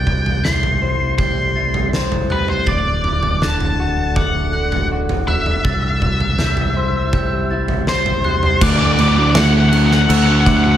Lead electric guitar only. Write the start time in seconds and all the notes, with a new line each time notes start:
Already playing: G5
0.44 C6
1.18 C6
2.32 B4
2.50 C5
2.68 D5
3.43 A5
4.17 F#5
5.28 E5
7.89 C5
8.63 D5
8.70 D5
8.79 D5
8.85 D5
8.93 D5
9.01 D5
9.08 D5
9.16 D5
9.23 D5
9.31 D5
9.37 F#5
9.45 F#5
9.53 F#5
9.60 F#5
9.69 F#5
9.77 F#5
9.86 F#5
9.93 F#5
10.02 F#5
10.11 F#5
10.18 F#5
10.26 F#5
10.32 F#5
10.41 F#5
10.47 F#5
10.57 F#5
10.64 F#5
10.71 F#5